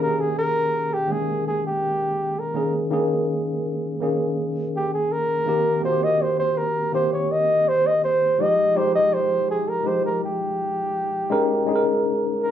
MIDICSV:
0, 0, Header, 1, 3, 480
1, 0, Start_track
1, 0, Tempo, 729927
1, 1681, Time_signature, 4, 2, 24, 8
1, 8227, End_track
2, 0, Start_track
2, 0, Title_t, "Flugelhorn"
2, 0, Program_c, 0, 56
2, 17, Note_on_c, 0, 70, 85
2, 134, Note_on_c, 0, 68, 90
2, 143, Note_off_c, 0, 70, 0
2, 246, Note_off_c, 0, 68, 0
2, 254, Note_on_c, 0, 70, 102
2, 615, Note_on_c, 0, 67, 90
2, 625, Note_off_c, 0, 70, 0
2, 735, Note_on_c, 0, 68, 93
2, 745, Note_off_c, 0, 67, 0
2, 968, Note_off_c, 0, 68, 0
2, 973, Note_on_c, 0, 68, 87
2, 1079, Note_off_c, 0, 68, 0
2, 1094, Note_on_c, 0, 67, 84
2, 1574, Note_on_c, 0, 70, 74
2, 1583, Note_off_c, 0, 67, 0
2, 1808, Note_off_c, 0, 70, 0
2, 3131, Note_on_c, 0, 67, 84
2, 3239, Note_off_c, 0, 67, 0
2, 3248, Note_on_c, 0, 68, 87
2, 3366, Note_on_c, 0, 70, 106
2, 3376, Note_off_c, 0, 68, 0
2, 3842, Note_off_c, 0, 70, 0
2, 3846, Note_on_c, 0, 72, 87
2, 3970, Note_on_c, 0, 75, 95
2, 3979, Note_off_c, 0, 72, 0
2, 4087, Note_on_c, 0, 72, 84
2, 4097, Note_off_c, 0, 75, 0
2, 4202, Note_off_c, 0, 72, 0
2, 4205, Note_on_c, 0, 72, 89
2, 4324, Note_on_c, 0, 70, 86
2, 4334, Note_off_c, 0, 72, 0
2, 4563, Note_off_c, 0, 70, 0
2, 4568, Note_on_c, 0, 72, 89
2, 4677, Note_off_c, 0, 72, 0
2, 4688, Note_on_c, 0, 73, 81
2, 4812, Note_on_c, 0, 75, 95
2, 4822, Note_off_c, 0, 73, 0
2, 5054, Note_on_c, 0, 72, 104
2, 5064, Note_off_c, 0, 75, 0
2, 5175, Note_on_c, 0, 75, 96
2, 5185, Note_off_c, 0, 72, 0
2, 5284, Note_off_c, 0, 75, 0
2, 5288, Note_on_c, 0, 72, 92
2, 5531, Note_on_c, 0, 75, 102
2, 5541, Note_off_c, 0, 72, 0
2, 5769, Note_on_c, 0, 72, 92
2, 5779, Note_off_c, 0, 75, 0
2, 5885, Note_off_c, 0, 72, 0
2, 5888, Note_on_c, 0, 75, 101
2, 6007, Note_on_c, 0, 72, 89
2, 6017, Note_off_c, 0, 75, 0
2, 6245, Note_off_c, 0, 72, 0
2, 6252, Note_on_c, 0, 68, 83
2, 6372, Note_on_c, 0, 70, 84
2, 6381, Note_off_c, 0, 68, 0
2, 6494, Note_on_c, 0, 72, 81
2, 6504, Note_off_c, 0, 70, 0
2, 6608, Note_off_c, 0, 72, 0
2, 6614, Note_on_c, 0, 70, 78
2, 6720, Note_off_c, 0, 70, 0
2, 6737, Note_on_c, 0, 67, 81
2, 7902, Note_off_c, 0, 67, 0
2, 8171, Note_on_c, 0, 70, 86
2, 8227, Note_off_c, 0, 70, 0
2, 8227, End_track
3, 0, Start_track
3, 0, Title_t, "Tine electric piano"
3, 0, Program_c, 1, 4
3, 0, Control_c, 1, 64, 127
3, 0, Note_on_c, 1, 51, 68
3, 0, Note_on_c, 1, 58, 54
3, 0, Note_on_c, 1, 61, 65
3, 0, Note_on_c, 1, 68, 73
3, 2, Note_off_c, 1, 61, 0
3, 2, Note_on_c, 1, 61, 55
3, 8, Note_on_c, 1, 67, 54
3, 52, Note_off_c, 1, 68, 0
3, 52, Note_on_c, 1, 68, 64
3, 610, Note_off_c, 1, 51, 0
3, 613, Note_off_c, 1, 58, 0
3, 615, Note_off_c, 1, 61, 0
3, 640, Note_off_c, 1, 68, 0
3, 707, Note_on_c, 1, 51, 64
3, 712, Note_on_c, 1, 58, 53
3, 718, Note_on_c, 1, 61, 51
3, 725, Note_on_c, 1, 56, 71
3, 1533, Note_off_c, 1, 51, 0
3, 1536, Note_off_c, 1, 58, 0
3, 1539, Note_off_c, 1, 61, 0
3, 1542, Note_off_c, 1, 56, 0
3, 1671, Note_on_c, 1, 51, 68
3, 1675, Note_on_c, 1, 58, 63
3, 1682, Note_on_c, 1, 61, 59
3, 1686, Note_on_c, 1, 68, 81
3, 1881, Note_off_c, 1, 51, 0
3, 1883, Note_off_c, 1, 58, 0
3, 1887, Note_off_c, 1, 61, 0
3, 1889, Note_off_c, 1, 68, 0
3, 1909, Note_on_c, 1, 51, 81
3, 1915, Note_on_c, 1, 58, 74
3, 1922, Note_on_c, 1, 61, 68
3, 1928, Note_on_c, 1, 68, 82
3, 2530, Note_off_c, 1, 51, 0
3, 2533, Note_off_c, 1, 58, 0
3, 2536, Note_off_c, 1, 61, 0
3, 2540, Note_off_c, 1, 68, 0
3, 2633, Note_on_c, 1, 51, 66
3, 2641, Note_on_c, 1, 58, 64
3, 2646, Note_on_c, 1, 61, 68
3, 2652, Note_on_c, 1, 68, 70
3, 3457, Note_off_c, 1, 51, 0
3, 3460, Note_off_c, 1, 58, 0
3, 3463, Note_off_c, 1, 61, 0
3, 3466, Note_off_c, 1, 68, 0
3, 3589, Note_on_c, 1, 51, 70
3, 3598, Note_on_c, 1, 58, 64
3, 3602, Note_on_c, 1, 60, 69
3, 3609, Note_off_c, 1, 67, 0
3, 3609, Note_on_c, 1, 67, 84
3, 3611, Control_c, 1, 64, 0
3, 3737, Control_c, 1, 64, 127
3, 3800, Note_off_c, 1, 51, 0
3, 3805, Note_off_c, 1, 58, 0
3, 3807, Note_off_c, 1, 60, 0
3, 3810, Note_off_c, 1, 67, 0
3, 3831, Note_on_c, 1, 51, 60
3, 3837, Note_on_c, 1, 58, 58
3, 3843, Note_on_c, 1, 60, 56
3, 3849, Note_on_c, 1, 66, 57
3, 3888, Note_off_c, 1, 66, 0
3, 3892, Note_on_c, 1, 67, 66
3, 4451, Note_off_c, 1, 51, 0
3, 4454, Note_off_c, 1, 58, 0
3, 4457, Note_off_c, 1, 60, 0
3, 4482, Note_off_c, 1, 67, 0
3, 4550, Note_on_c, 1, 51, 62
3, 4556, Note_on_c, 1, 58, 59
3, 4562, Note_on_c, 1, 60, 57
3, 4568, Note_on_c, 1, 67, 72
3, 5375, Note_off_c, 1, 51, 0
3, 5378, Note_off_c, 1, 58, 0
3, 5381, Note_off_c, 1, 60, 0
3, 5384, Note_off_c, 1, 67, 0
3, 5514, Note_on_c, 1, 53, 70
3, 5520, Note_on_c, 1, 56, 65
3, 5525, Note_on_c, 1, 63, 63
3, 5532, Control_c, 1, 64, 0
3, 5533, Note_on_c, 1, 67, 76
3, 5665, Control_c, 1, 64, 127
3, 5723, Note_off_c, 1, 53, 0
3, 5726, Note_off_c, 1, 56, 0
3, 5728, Note_off_c, 1, 63, 0
3, 5732, Note_off_c, 1, 67, 0
3, 5748, Note_on_c, 1, 53, 60
3, 5756, Note_on_c, 1, 56, 62
3, 5761, Note_on_c, 1, 63, 61
3, 5765, Note_on_c, 1, 67, 78
3, 6369, Note_off_c, 1, 53, 0
3, 6373, Note_off_c, 1, 56, 0
3, 6375, Note_off_c, 1, 63, 0
3, 6377, Note_off_c, 1, 67, 0
3, 6468, Note_on_c, 1, 53, 63
3, 6475, Note_on_c, 1, 56, 59
3, 6482, Note_on_c, 1, 63, 53
3, 6488, Note_on_c, 1, 67, 67
3, 7293, Note_off_c, 1, 53, 0
3, 7296, Note_off_c, 1, 56, 0
3, 7300, Note_off_c, 1, 63, 0
3, 7303, Note_off_c, 1, 67, 0
3, 7429, Note_on_c, 1, 56, 91
3, 7435, Note_on_c, 1, 61, 80
3, 7441, Note_on_c, 1, 63, 82
3, 7445, Note_on_c, 1, 70, 100
3, 7450, Control_c, 1, 64, 0
3, 7578, Control_c, 1, 64, 127
3, 7640, Note_off_c, 1, 56, 0
3, 7642, Note_off_c, 1, 61, 0
3, 7646, Note_off_c, 1, 63, 0
3, 7648, Note_off_c, 1, 70, 0
3, 7671, Note_on_c, 1, 56, 78
3, 7676, Note_on_c, 1, 61, 68
3, 7684, Note_on_c, 1, 63, 76
3, 7690, Note_on_c, 1, 68, 66
3, 7728, Note_off_c, 1, 68, 0
3, 7731, Note_on_c, 1, 70, 91
3, 8227, Note_off_c, 1, 56, 0
3, 8227, Note_off_c, 1, 61, 0
3, 8227, Note_off_c, 1, 63, 0
3, 8227, Note_off_c, 1, 70, 0
3, 8227, End_track
0, 0, End_of_file